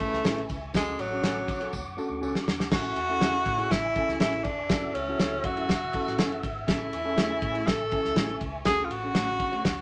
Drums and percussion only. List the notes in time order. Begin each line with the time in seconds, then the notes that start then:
0.00 kick, ride
0.13 snare
0.24 snare, ride, tambourine
0.38 ride
0.49 kick, ride, tambourine
0.74 kick, snare, ride, tambourine
0.99 ride, tambourine
1.24 snare, ride, tambourine
1.48 kick, ride, tambourine
1.61 ride
1.73 kick, tambourine
1.98 tambourine
2.23 tambourine
2.35 snare
2.47 snare, tambourine
2.60 snare
2.71 kick, snare, crash
2.96 ride
3.21 snare, ride
3.46 kick, ride
3.58 ride
3.71 kick, snare, ride
3.95 kick, ride
4.09 snare
4.20 snare, ride
4.33 ride
4.44 kick, ride
4.69 kick, snare, ride
4.95 ride
5.20 snare, ride
5.44 kick, ride
5.57 ride
5.69 kick, snare, ride
5.93 kick, ride
6.07 snare
6.18 snare, ride
6.32 ride
6.43 kick, ride
6.68 kick, snare, ride
6.93 ride
7.18 snare, ride
7.42 kick, ride
7.55 ride
7.67 kick, snare, ride
7.91 kick, ride
8.05 snare
8.16 snare, ride
8.29 ride
8.41 kick, ride
8.65 kick, snare, ride
8.91 ride
9.15 snare, ride
9.40 kick, ride
9.53 ride
9.65 kick, snare, ride